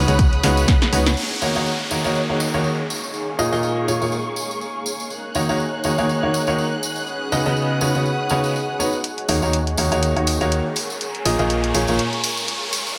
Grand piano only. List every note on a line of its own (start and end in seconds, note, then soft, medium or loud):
0.08 0.21 C#3 medium
0.08 0.21 B3 medium
0.08 0.21 D#4 medium
0.08 0.21 F#4 medium
0.08 0.21 C#5 medium
0.44 0.67 C#3 medium
0.44 0.67 B3 medium
0.44 0.67 D#4 medium
0.44 0.67 F#4 medium
0.44 0.67 C#5 loud
0.93 1.08 B3 medium
0.93 1.08 D#4 medium
0.93 1.08 F#4 medium
0.93 1.08 C#5 medium
1.42 1.54 D#3 medium
1.42 1.54 A#3 medium
1.42 1.54 D#4 medium
1.42 1.54 F#4 medium
1.42 1.54 C#5 medium
1.56 1.69 D#3 medium
1.56 1.69 A#3 medium
1.56 1.69 D#4 medium
1.56 1.69 F#4 medium
1.56 1.69 C#5 medium
1.91 2.03 D#3 medium
1.91 2.03 A#3 medium
1.91 2.03 D#4 medium
1.91 2.03 F#4 medium
1.91 2.03 C#5 medium
2.05 2.26 D#3 medium
2.05 2.26 A#3 medium
2.05 2.26 D#4 medium
2.05 2.26 F#4 medium
2.05 2.26 C#5 medium
2.29 2.50 D#3 medium
2.29 2.50 A#3 medium
2.29 2.50 D#4 medium
2.29 2.50 F#4 medium
2.29 2.50 C#5 medium
2.54 2.77 D#3 medium
2.54 2.77 A#3 medium
2.54 2.77 D#4 medium
2.54 2.77 F#4 medium
2.54 2.77 C#5 medium
3.39 3.50 A#2 medium
3.39 3.50 A#3 medium
3.39 3.50 F4 medium
3.39 3.50 G#4 medium
3.39 3.50 D#5 loud
3.52 3.85 A#2 medium
3.52 3.85 A#3 medium
3.52 3.85 F4 medium
3.52 3.85 G#4 medium
3.52 3.85 D#5 loud
3.88 3.99 A#2 medium
3.88 4.00 A#3 medium
3.88 3.99 F4 medium
3.88 3.99 G#4 medium
3.88 3.99 C#5 medium
4.02 4.15 A#2 medium
4.02 4.15 A#3 medium
4.02 4.15 F4 medium
4.02 4.15 G#4 medium
4.02 4.15 C#5 medium
5.35 5.47 D#3 medium
5.35 5.47 A#3 medium
5.35 5.47 D#4 medium
5.35 5.47 F#4 medium
5.35 5.47 C#5 medium
5.49 5.62 D#3 medium
5.49 5.62 A#3 medium
5.49 5.62 D#4 medium
5.49 5.62 F#4 medium
5.49 5.62 C#5 medium
5.85 5.96 D#3 medium
5.85 5.96 A#3 medium
5.85 5.96 D#4 medium
5.85 5.96 F#4 medium
5.85 5.96 C#5 medium
5.98 6.20 D#3 medium
5.98 6.20 A#3 medium
5.98 6.20 D#4 medium
5.98 6.20 F#4 medium
5.98 6.20 C#5 loud
6.23 6.43 D#3 medium
6.23 6.43 A#3 medium
6.23 6.43 D#4 medium
6.23 6.43 F#4 medium
6.23 6.43 C#5 medium
6.48 6.70 D#3 medium
6.48 6.70 A#3 medium
6.48 6.70 D#4 medium
6.48 6.70 F#4 medium
6.48 6.70 C#5 loud
7.32 7.44 C#3 medium
7.32 7.44 B3 medium
7.32 7.44 D#4 medium
7.32 7.44 F#4 medium
7.32 7.44 D#5 loud
7.46 7.79 C#3 medium
7.46 7.79 B3 medium
7.46 7.79 D#4 medium
7.46 7.79 F#4 medium
7.46 7.79 D#5 medium
7.81 7.93 C#3 medium
7.81 7.93 B3 medium
7.81 7.93 D#4 medium
7.81 7.93 F#4 medium
7.81 7.93 C#5 medium
7.95 8.08 C#3 medium
7.95 8.08 B3 medium
7.95 8.08 D#4 medium
7.95 8.08 F#4 medium
7.95 8.08 C#5 medium
8.30 8.54 C#3 medium
8.30 8.54 B3 medium
8.30 8.54 D#4 medium
8.30 8.54 F#4 medium
8.30 8.54 C#5 loud
8.79 8.95 B3 medium
8.79 8.95 D#4 medium
8.79 8.95 F#4 medium
8.79 8.95 C#5 medium
9.29 9.40 D#3 medium
9.29 9.40 A#3 medium
9.29 9.40 D#4 medium
9.29 9.40 F#4 medium
9.29 9.40 C#5 medium
9.42 9.56 D#3 medium
9.42 9.56 A#3 medium
9.42 9.56 D#4 medium
9.42 9.56 F#4 medium
9.42 9.56 C#5 medium
9.78 9.90 D#3 medium
9.78 9.90 A#3 medium
9.78 9.90 D#4 medium
9.78 9.90 F#4 medium
9.78 9.90 C#5 medium
9.92 10.13 D#3 medium
9.92 10.13 A#3 medium
9.92 10.13 D#4 medium
9.92 10.13 F#4 medium
9.92 10.13 C#5 loud
10.16 10.37 D#3 medium
10.16 10.37 A#3 medium
10.16 10.37 D#4 medium
10.16 10.37 F#4 medium
10.16 10.37 C#5 medium
10.41 10.64 D#3 medium
10.41 10.64 A#3 medium
10.41 10.64 D#4 medium
10.41 10.64 F#4 medium
10.41 10.64 C#5 loud
11.25 11.37 A#2 medium
11.25 11.37 A#3 medium
11.25 11.37 F4 medium
11.25 11.37 G#4 medium
11.25 11.37 D#5 loud
11.39 11.72 A#2 medium
11.39 11.72 A#3 medium
11.39 11.72 F4 medium
11.39 11.72 G#4 medium
11.39 11.72 D#5 loud
11.75 11.86 A#2 medium
11.75 11.86 A#3 medium
11.75 11.86 F4 medium
11.75 11.86 G#4 medium
11.75 11.86 C#5 medium
11.88 12.01 A#2 medium
11.88 12.01 A#3 medium
11.88 12.01 F4 medium
11.88 12.01 G#4 medium
11.88 12.01 C#5 medium